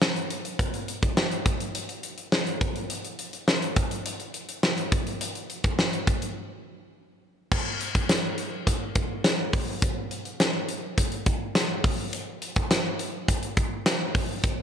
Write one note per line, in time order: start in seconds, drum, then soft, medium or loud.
0.02 snare loud
0.16 closed hi-hat soft
0.30 closed hi-hat medium
0.45 closed hi-hat medium
0.59 kick loud
0.59 closed hi-hat loud
0.74 closed hi-hat medium
0.88 closed hi-hat medium
1.03 kick medium
1.03 closed hi-hat medium
1.17 snare loud
1.32 closed hi-hat soft
1.46 kick medium
1.46 closed hi-hat medium
1.60 closed hi-hat medium
1.75 closed hi-hat medium
1.89 closed hi-hat medium
2.03 closed hi-hat medium
2.18 closed hi-hat medium
2.32 snare loud
2.47 closed hi-hat soft
2.61 kick loud
2.61 closed hi-hat medium
2.76 closed hi-hat medium
2.90 closed hi-hat loud
3.04 closed hi-hat medium
3.19 closed hi-hat medium
3.33 closed hi-hat medium
3.48 snare medium
3.62 closed hi-hat soft
3.76 kick medium
3.76 closed hi-hat medium
3.91 closed hi-hat medium
4.06 closed hi-hat medium
4.20 closed hi-hat medium
4.34 closed hi-hat medium
4.49 closed hi-hat medium
4.63 snare loud
4.78 closed hi-hat soft
4.92 kick loud
4.92 closed hi-hat medium
5.07 closed hi-hat soft
5.21 closed hi-hat loud
5.35 closed hi-hat medium
5.50 closed hi-hat medium
5.64 kick medium
5.64 closed hi-hat soft
5.79 snare medium
5.93 closed hi-hat soft
6.07 kick medium
6.07 closed hi-hat medium
6.22 closed hi-hat medium
7.52 kick loud
7.52 crash medium
7.80 closed hi-hat medium
7.95 kick medium
7.95 closed hi-hat medium
8.09 snare loud
8.09 closed hi-hat medium
8.38 closed hi-hat medium
8.67 kick medium
8.67 closed hi-hat loud
8.95 kick medium
8.95 closed hi-hat medium
9.24 snare loud
9.24 closed hi-hat medium
9.53 kick loud
9.53 open hi-hat medium
9.82 kick loud
9.82 closed hi-hat loud
10.11 closed hi-hat medium
10.25 closed hi-hat medium
10.40 snare loud
10.40 closed hi-hat medium
10.69 closed hi-hat medium
10.98 kick medium
10.98 closed hi-hat loud
11.12 closed hi-hat medium
11.26 kick medium
11.26 closed hi-hat medium
11.55 snare loud
11.55 closed hi-hat medium
11.84 kick loud
11.84 open hi-hat medium
12.13 closed hi-hat loud
12.42 closed hi-hat medium
12.56 kick medium
12.56 closed hi-hat medium
12.71 snare loud
12.71 closed hi-hat medium
12.99 closed hi-hat medium
13.28 kick medium
13.28 closed hi-hat loud
13.43 closed hi-hat medium
13.57 kick medium
13.57 closed hi-hat medium
13.86 snare loud
13.86 closed hi-hat medium
14.15 kick loud
14.15 open hi-hat medium
14.44 kick loud
14.44 closed hi-hat loud